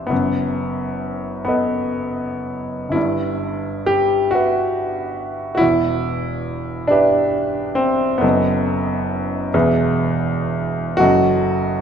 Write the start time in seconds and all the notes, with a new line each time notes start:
Already playing: C4 D4 G4 B4 E5
0.07 F#1 F#2 B3
1.45 B3 A4 B4 D#5
2.89 G1 E4
2.95 G2
3.86 G4
4.31 F#4 G4 B4
4.35 E5
5.55 E4 F#4
5.61 E1 E2
6.88 D4 G4 B4 E5
7.75 C4
8.18 F#1 F#2 B3 A4 B4
8.23 D#5
9.54 E1 E2 G#4 B4 E5
10.97 F#1 F#2 F#4 A4 D#5